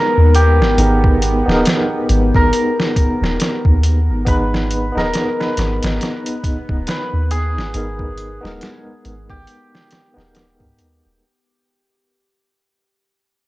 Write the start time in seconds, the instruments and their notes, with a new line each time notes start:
Already playing: tine electric piano G#3 B3 D#4 A#4, synth drone B3, hammered dulcimer G#4 A#4
0.17 808-style bass D#2
0.35 hammered dulcimer G4, closed hi-hat
0.60 808-style bass G#1, snare
0.77 808-style bass G#1, tine electric piano B3 D#4 G#4, closed hi-hat
0.82 tine electric piano A#4
1.04 kick
1.22 closed hi-hat
1.45 808-style bass D#1, tine electric piano B3 D#4, snare
1.50 tine electric piano G#4 A#4
1.65 snare, closed hi-hat
2.09 808-style bass G#1, closed hi-hat
2.35 808-style bass G#1, hammered dulcimer A#4, kick
2.53 closed hi-hat
2.80 snare
2.96 kick, closed hi-hat
3.21 808-style bass D#1, snare
3.40 snare, closed hi-hat
3.65 808-style bass D#2, kick
3.83 closed hi-hat
4.09 808-style bass G#1
4.25 808-style bass G#1, tine electric piano B3 D#4 G#4, hammered dulcimer B4, kick, closed hi-hat
4.29 tine electric piano B4
4.54 snare
4.71 closed hi-hat
4.92 808-style bass D#1, tine electric piano B3 D#4
4.97 tine electric piano G#4 D#5, hammered dulcimer A#4, snare
5.14 snare, closed hi-hat
5.40 hammered dulcimer B4, snare
5.57 808-style bass G#1, snare, closed hi-hat
5.83 808-style bass G#1, snare, closed hi-hat
6.01 snare, closed hi-hat
6.26 closed hi-hat
6.44 kick, closed hi-hat
6.69 808-style bass D#1, kick
6.87 hammered dulcimer B4, snare, closed hi-hat
7.13 808-style bass D#2
7.31 hammered dulcimer G#4, closed hi-hat
7.56 808-style bass G#1, snare
7.74 808-style bass G#1, tine electric piano B3 D#4 G#4 A#4, closed hi-hat
7.99 kick
8.18 closed hi-hat
8.41 808-style bass D#1, tine electric piano B3 D#4
8.45 tine electric piano G#3 A#4, snare
8.61 snare, closed hi-hat
9.05 808-style bass G#1, closed hi-hat
9.30 808-style bass G#1, hammered dulcimer G4, kick
9.47 closed hi-hat
9.75 snare
9.91 snare, closed hi-hat
10.14 808-style bass D#1, tine electric piano B3 D#4
10.18 tine electric piano G#4 A#4, snare
10.35 snare, closed hi-hat
10.60 808-style bass G#2, kick
10.78 808-style bass D#2, closed hi-hat
11.05 808-style bass D#1